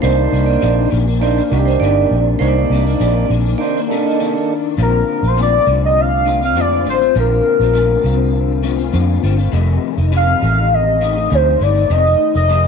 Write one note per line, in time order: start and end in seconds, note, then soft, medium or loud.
0.02 0.27 C2 loud
0.02 0.31 C3 medium
0.02 0.32 D#3 medium
0.02 0.89 A#3 medium
0.02 0.33 A#3 medium
0.02 0.89 D4 medium
0.02 0.33 D4 medium
0.02 0.90 D#4 medium
0.02 0.30 C5 loud
0.02 0.90 C5 medium
0.33 0.56 C2 loud
0.33 0.47 C3 medium
0.33 0.48 D#3 medium
0.33 0.47 A#3 medium
0.33 0.46 D4 medium
0.46 0.61 D#3 soft
0.46 0.61 A#3 soft
0.46 0.61 D4 medium
0.46 0.88 D5 medium
0.61 0.86 A#1 medium
0.61 0.89 C3 medium
0.61 0.90 D#3 medium
0.61 0.91 A#3 medium
0.61 0.91 D4 loud
0.91 1.40 A#1 medium
0.91 1.06 C3 medium
0.91 1.06 D#3 medium
0.91 1.07 A#3 medium
0.91 1.06 D4 medium
1.07 1.20 D#3 soft
1.07 1.22 A#3 medium
1.07 1.22 D4 medium
1.20 1.36 C3 medium
1.20 1.36 D#3 medium
1.20 1.42 A#3 medium
1.20 1.37 A#3 medium
1.20 1.43 D4 medium
1.20 1.35 D4 medium
1.20 1.43 D#4 medium
1.20 1.44 C5 medium
1.20 1.36 D5 medium
1.36 1.51 D#3 soft
1.36 1.51 A#3 soft
1.36 1.51 D4 medium
1.50 1.75 C2 medium
1.50 1.66 C3 medium
1.50 1.66 D#3 medium
1.50 2.16 A#3 medium
1.50 1.66 A#3 medium
1.50 2.16 D4 medium
1.50 1.65 D4 medium
1.50 2.16 D#4 medium
1.50 1.58 F#4 medium
1.59 2.20 G4 medium
1.65 1.81 D#3 medium
1.65 1.82 A#3 medium
1.65 1.81 D4 medium
1.65 1.80 C5 medium
1.80 2.04 G1 medium
1.80 2.38 C3 medium
1.80 2.39 D#3 medium
1.80 2.41 A#3 medium
1.80 2.41 D4 loud
1.80 2.22 D5 medium
2.11 2.35 A#1 medium
2.39 2.64 C2 loud
2.39 2.70 C3 medium
2.39 2.70 D#3 medium
2.39 3.27 A#3 medium
2.39 2.71 A#3 medium
2.39 3.27 D4 medium
2.39 2.71 D4 medium
2.39 3.27 D#4 medium
2.39 2.68 C5 medium
2.39 2.47 C#5 medium
2.48 3.31 D5 medium
2.70 2.94 C2 medium
2.70 2.85 C3 medium
2.70 2.86 D#3 medium
2.70 2.85 A#3 medium
2.70 2.84 D4 medium
2.83 2.99 D#3 soft
2.83 3.00 A#3 soft
2.83 3.00 D4 medium
2.83 3.26 D5 medium
3.00 3.24 A#1 medium
3.00 3.28 C3 medium
3.00 3.29 D#3 medium
3.00 3.30 A#3 medium
3.00 3.30 D4 medium
3.30 3.54 A#1 medium
3.30 3.44 C3 medium
3.30 3.45 D#3 medium
3.30 3.45 A#3 medium
3.30 3.44 D4 medium
3.45 3.60 D#3 soft
3.45 3.60 A#3 soft
3.45 3.60 D4 medium
3.58 3.75 C3 medium
3.58 3.75 D#3 medium
3.58 3.80 A#3 medium
3.58 3.81 D4 medium
3.58 3.81 D#4 medium
3.58 3.82 C5 medium
3.58 3.73 D5 medium
3.63 3.75 A#3 medium
3.63 3.74 D4 medium
3.75 3.90 D#3 soft
3.75 3.90 A#3 medium
3.75 3.89 D4 medium
3.88 4.04 C3 medium
3.88 4.05 D#3 medium
3.88 4.53 A#3 medium
3.88 4.54 D4 medium
3.88 4.54 D#4 medium
3.88 4.55 A4 medium
3.92 4.05 A#3 medium
3.92 4.04 D4 medium
4.03 4.20 A#3 medium
4.03 4.19 D4 medium
4.03 4.17 D#5 medium
4.08 4.19 D#3 soft
4.20 4.34 C3 medium
4.20 4.34 D#3 medium
4.20 4.34 A#3 medium
4.20 4.32 D4 medium
4.33 4.79 D#3 soft
4.33 4.78 A#3 soft
4.33 4.78 D4 soft
4.77 5.02 A#1 medium
4.77 5.22 A#2 medium
4.77 5.23 D3 medium
4.77 5.23 C4 medium
4.77 5.21 F4 medium
4.82 5.29 A#4 medium
5.22 5.58 A#1 medium
5.22 5.37 A3 soft
5.22 5.37 C4 soft
5.22 5.37 F4 soft
5.27 5.40 C5 medium
5.37 5.67 A#2 medium
5.37 5.65 D3 medium
5.37 5.65 A3 medium
5.37 5.67 C4 medium
5.37 5.67 F4 medium
5.42 5.81 D5 loud
5.66 6.56 C2 medium
5.66 6.24 D3 medium
5.66 6.26 A3 medium
5.66 6.27 C4 medium
5.66 6.27 F4 medium
5.85 6.02 D#5 medium
6.01 6.43 F5 loud
6.25 6.41 D3 medium
6.25 6.41 A3 medium
6.25 6.41 C4 medium
6.25 6.39 F4 medium
6.41 6.55 A3 soft
6.41 6.55 C4 soft
6.41 6.56 F4 medium
6.41 6.62 F5 medium
6.56 6.86 F2 medium
6.56 6.86 A#2 medium
6.56 6.83 D3 medium
6.56 6.84 A3 medium
6.56 6.85 C4 medium
6.56 6.85 F4 medium
6.60 6.88 D5 loud
6.84 7.10 A1 medium
6.84 7.00 D3 medium
6.84 7.00 A3 medium
6.84 7.00 C4 medium
6.84 6.99 F4 medium
6.89 7.15 C5 medium
7.00 7.16 A3 soft
7.00 7.15 C4 soft
7.00 7.15 F4 soft
7.15 7.39 A#1 loud
7.15 7.60 A#2 medium
7.15 7.60 D3 medium
7.15 7.60 C4 medium
7.15 7.59 F4 medium
7.19 8.92 A#4 loud
7.60 7.95 A#1 medium
7.60 7.74 A3 soft
7.60 7.73 C4 soft
7.60 7.74 F4 soft
7.74 8.04 A#2 medium
7.74 8.02 D3 medium
7.74 8.04 A3 medium
7.74 8.04 C4 medium
7.74 8.05 F4 medium
8.03 8.89 C2 medium
8.03 8.61 D3 medium
8.03 8.64 C4 medium
8.03 8.65 F4 medium
8.63 8.78 D3 medium
8.63 8.79 A3 medium
8.63 8.78 C4 medium
8.63 8.77 F4 medium
8.78 8.92 A3 soft
8.78 8.92 C4 soft
8.78 8.93 F4 medium
8.92 9.17 F2 medium
8.92 9.23 A#2 medium
8.92 9.22 D3 medium
8.92 9.23 A3 loud
8.92 9.23 C4 loud
8.92 9.23 F4 loud
9.23 9.47 G1 medium
9.23 9.38 D3 medium
9.23 9.38 A3 medium
9.23 9.38 C4 medium
9.23 9.36 F4 medium
9.37 9.51 A3 soft
9.37 9.52 C4 medium
9.37 9.53 F4 medium
9.52 9.77 F1 loud
9.52 9.97 F2 medium
9.52 9.97 C3 medium
9.52 9.97 D#3 medium
9.52 9.96 A3 loud
9.52 9.95 D#4 medium
9.96 10.33 F1 medium
9.96 10.11 D#3 soft
9.96 10.12 A3 soft
9.96 10.11 D#4 soft
10.12 10.42 F2 medium
10.12 10.40 C3 medium
10.12 10.41 D#3 medium
10.12 10.42 A3 medium
10.12 10.42 D#4 medium
10.16 10.76 F5 loud
10.41 11.27 A1 medium
10.41 11.00 C3 medium
10.41 11.00 D#3 medium
10.41 11.02 A3 medium
10.41 11.02 D#4 medium
10.74 11.36 D#5 loud
11.01 11.16 C3 medium
11.01 11.16 D#3 medium
11.01 11.16 A3 medium
11.01 11.14 D#4 medium
11.16 11.30 D#3 soft
11.16 11.31 A3 soft
11.16 11.31 D#4 soft
11.30 11.55 D2 medium
11.30 11.60 F2 medium
11.30 11.59 C3 medium
11.30 11.60 D#3 medium
11.30 11.60 A3 medium
11.30 11.61 D#4 medium
11.34 11.64 C5 medium
11.60 11.84 G1 medium
11.60 11.75 C3 medium
11.60 11.75 D#3 medium
11.60 11.74 A3 medium
11.60 11.73 D#4 medium
11.60 11.93 D5 loud
11.75 11.90 D#3 soft
11.75 11.90 A3 soft
11.75 11.90 D#4 soft
11.90 12.14 F1 loud
11.90 12.05 F2 medium
11.90 12.05 C3 medium
11.90 12.06 D#3 medium
11.90 12.04 A3 medium
11.90 12.03 D#4 medium
11.90 12.36 D#5 loud
12.04 12.34 D#3 soft
12.04 12.34 A3 soft
12.04 12.33 D#4 soft
12.34 12.68 F1 medium
12.34 12.48 D#3 soft
12.34 12.49 A3 soft
12.34 12.49 D#4 medium
12.34 12.68 D#5 loud
12.49 12.68 F2 medium
12.49 12.68 C3 medium
12.49 12.68 D#3 medium
12.49 12.68 A3 medium
12.49 12.68 D#4 medium